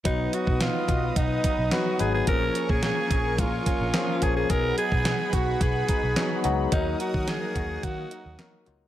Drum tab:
HH |x-x-x-x-x-x-x-x-|x-x-x-x-x-x-x-x-|x-x-x-x-x-x-x-x-|x-x-x-x-x-x-x-x-|
SD |----o-------o---|----o-------o---|----o-------o---|----o-------o---|
BD |o--o--o-o-o-----|o--o--o-o-o---o-|o--o--o-o-o-----|o--o--o-o-------|